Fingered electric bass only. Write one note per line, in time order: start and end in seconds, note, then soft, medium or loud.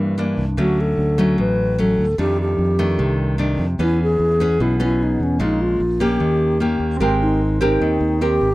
0.00 0.34 G2 medium
0.38 0.56 C2 medium
0.58 0.95 D2 medium
0.98 1.35 D2 medium
1.38 1.94 A1 medium
1.98 2.17 D2 medium
2.18 2.56 F2 medium
2.58 2.96 F2 medium
2.99 3.55 C2 medium
3.59 3.78 F2 medium
3.79 4.16 E2 medium
4.19 4.57 E2 medium
4.59 5.16 B1 medium
5.20 5.39 E2 medium
5.40 5.77 A#1 medium
5.80 6.17 A#1 medium
6.20 6.76 D#2 medium
6.80 6.99 D#2 medium
7.00 7.77 G#1 medium
7.81 8.00 D#2 medium
8.01 8.38 D#2 medium
8.41 8.54 G#1 medium